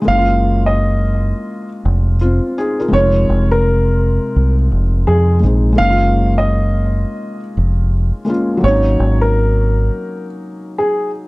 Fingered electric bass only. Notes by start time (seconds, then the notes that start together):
0.07 F#1
1.85 F1
2.93 F1
3.29 F1
4.36 C2
4.72 F1
5.08 F2
5.43 A#1
5.79 F#1
7.57 F1
8.64 G#1
9.00 G#1